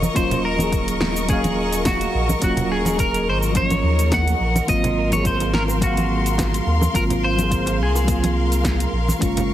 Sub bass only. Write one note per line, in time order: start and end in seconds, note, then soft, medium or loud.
0.15 2.08 D#1 medium
2.14 2.35 A#1 medium
2.42 3.28 D#1 medium
3.27 3.83 G#1 medium
3.83 4.34 D#2 loud
4.40 4.61 A#1 medium
4.68 6.60 G#1 medium
6.66 6.87 D#2 medium
6.94 7.80 G#1 medium
7.79 8.86 C2 medium
8.92 9.13 A#1 medium
9.21 9.54 F#1 loud